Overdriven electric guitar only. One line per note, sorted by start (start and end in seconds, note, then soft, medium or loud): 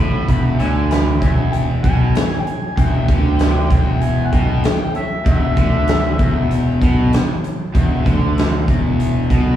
0.00 0.27 A2 loud
0.27 0.58 E2 loud
0.58 1.20 D3 medium
1.21 1.83 E2 medium
1.83 2.14 B2 medium
2.77 3.07 E2 loud
3.08 3.70 D3 medium
3.71 4.32 E2 medium
4.33 4.63 B2 loud
5.25 5.56 E2 loud
5.56 6.18 D3 loud
6.18 6.80 E2 medium
6.81 7.12 B2 loud
7.74 8.05 E2 medium
8.05 8.67 D3 medium
8.67 9.29 E2 medium
9.30 9.56 B2 medium